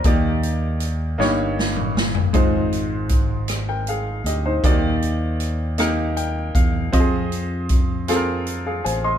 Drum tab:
HH |x-x-x-------|x-x-x-x-x-x-|x-x-x-x-x-x-|x-x-x-x-x-x-|
SD |------o-o-o-|------r-----|------r-----|------r-----|
T2 |---------o--|------------|------------|------------|
FT |-----------o|------------|------------|------------|
BD |o-----------|o---o-------|o---------o-|o---o-------|